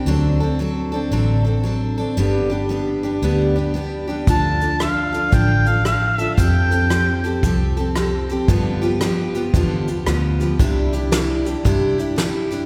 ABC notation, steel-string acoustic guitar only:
X:1
M:4/4
L:1/8
Q:"Swing" 1/4=114
K:Ddor
V:1 name="Steel-string acoustic guitar"
[D,^F,CDA] [CDA] [F,CDA] [CDA] [D,F,CDA] [CDA] [F,CDA] [CDA] | [G,,D,G,B,DG] [G,B,DG] [G,B,DG] [G,B,DG] [G,,D,G,B,DG] [G,B,DG] [G,B,DG] [G,B,DG] | [D,F,DFA] [DFA] [F,DFA] [DFA] [D,F,DFA] [DFA] [F,DFA] [DFA] | [F,CGA] [CGA] [F,CGA] [CGA] [F,CGA] [CGA] [F,CGA] [CGA] |
[G,,D,F,B,FG] [F,B,FG] [F,B,FG] [F,B,FG] [G,,D,F,B,FG] [F,B,FG] [F,B,FG] [F,B,FG] | [C,G,DEG] [DEG] [G,DEG] [DEG] [C,G,DEG] [DEG] [G,DEG] [DEG] |]